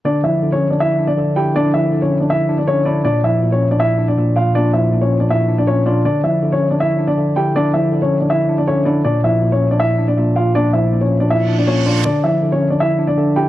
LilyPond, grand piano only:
\new Staff \with { instrumentName = "Grand piano" } { \time 4/4 \key d \minor \tempo 4 = 160 <d' d''>8 <e' e''>8. <cis' cis''>8 <d' d''>16 <e' e''>8. <d' d''>8. <g' g''>8 | <d' d''>8 <e' e''>8. <cis' cis''>8 <d' d''>16 <e' e''>8. <d' d''>16 <cis' cis''>8 <d' d''>8 | <d' d''>8 <e' e''>8. <cis' cis''>8 <d' d''>16 <e' e''>8. <d' d''>8. <f' f''>8 | <d' d''>8 <e' e''>8. <cis' cis''>8 <d' d''>16 <e' e''>8. <d' d''>16 <cis' cis''>8 <d' d''>8 |
<d' d''>8 <e' e''>8. <cis' cis''>8 <d' d''>16 <e' e''>8. <d' d''>8. <g' g''>8 | <d' d''>8 <e' e''>8. <cis' cis''>8 <d' d''>16 <e' e''>8. <d' d''>16 <cis' cis''>8 <d' d''>8 | <d' d''>8 <e' e''>8. <cis' cis''>8 <d' d''>16 <e' e''>8. <d' d''>8. <f' f''>8 | <d' d''>8 <e' e''>8. <cis' cis''>8 <d' d''>16 <e' e''>8. <d' d''>16 <cis' cis''>8 <d' d''>8 |
<d' d''>8 <e' e''>8. <cis' cis''>8 <d' d''>16 <e' e''>8. <d' d''>8. <g' g''>8 | }